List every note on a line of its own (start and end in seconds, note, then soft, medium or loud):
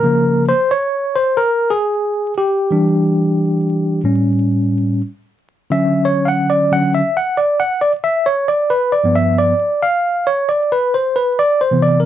0.00 0.51 C#3 medium
0.00 0.51 F3 soft
0.00 0.44 A#4 medium
0.04 0.52 A#3 medium
0.49 0.72 C5 loud
0.71 1.17 C#5 loud
1.15 1.38 C5 medium
1.37 1.72 A#4 loud
1.71 2.33 G#4 medium
2.38 4.00 G4 medium
2.71 4.00 E3 medium
2.71 4.01 G3 soft
2.71 4.01 D4 medium
4.04 5.00 A2 soft
4.04 5.00 G3 soft
4.04 5.01 C#4 medium
5.70 6.70 D3 medium
5.70 6.71 F#3 medium
5.70 6.71 C#4 medium
5.70 6.06 E5 medium
6.05 6.26 C#5 medium
6.25 6.27 F5 medium
6.25 6.50 F#5 loud
6.50 6.72 D5 medium
6.71 7.01 D3 soft
6.71 7.01 F#3 soft
6.71 7.02 C#4 medium
6.71 6.93 F#5 loud
6.94 7.17 E5 medium
7.17 7.39 F#5 medium
7.37 7.60 D5 medium
7.60 7.80 F#5 medium
7.81 7.92 D5 medium
8.04 8.27 E5 medium
8.26 8.49 C#5 medium
8.48 8.71 D5 medium
8.70 8.93 B4 medium
8.92 9.16 D5 medium
9.04 9.51 G2 medium
9.04 9.52 F3 medium
9.04 9.52 B3 medium
9.16 9.38 E5 medium
9.39 9.84 D5 medium
9.82 10.28 F5 loud
10.27 10.50 C#5 medium
10.49 10.72 D5 medium
10.72 10.94 B4 medium
10.94 11.17 C5 medium
11.16 11.39 B4 medium
11.39 11.61 D5 loud
11.61 11.81 C5 medium
11.71 12.06 C3 medium
11.71 12.06 E3 medium
11.71 12.06 B3 medium
11.82 12.00 D5 medium
12.00 12.05 A#4 medium